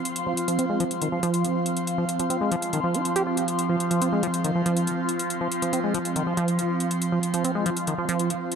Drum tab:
HH |xx-xxx-xxx-xxx-x|xx-xxx-xxx-xxx-x|xx-xxx-xxx-xxx-x|xx-xxx-xxx-xxx-x|

HH |xx-xxx-xxx-xxx-x|